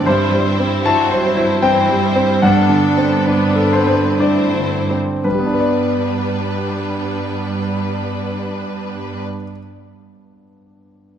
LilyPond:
<<
  \new Staff \with { instrumentName = "Violin section" } { \time 3/4 \key g \major \tempo 4 = 60 << { c''4 c''4 c''4 | a'4 b'4 c''8 r8 | b'2.~ | b'2. | } \\ { e'8 e'8 fis'8 e'4. | d'8 d'4. e'8 r8 | d'2.~ | d'2. | } >> }
  \new Staff \with { instrumentName = "Grand piano" } { \time 3/4 \key g \major << { c''4 a''4 g''4 | fis''4. c''8 d''4 | <g, g b d' b' d''>2.~ | <g, g b d' b' d''>2. | } \\ { \tuplet 3/2 { g,8 g8 c'8 e'8 c''8 e'8 c'8 g8 c'8 } | \tuplet 3/2 { g,8 d8 c'8 d'8 a'8 c''8 d'8 d8 c'8 } | r2. | r2. | } >> }
  \new Staff \with { instrumentName = "Viola section" } { \time 3/4 \key g \major << { c'2 c'4 | d'4 d'8 c'8 c'8 r8 | b2.~ | b2. | } \\ { g4 fis4 e8 g8 | b2 a8 r8 | g2.~ | g2. | } >> }
  \new Staff \with { instrumentName = "Cello section" } { \clef bass \time 3/4 \key g \major g,2.~ | g,2~ g,8 r8 | g,2.~ | g,2. | }
>>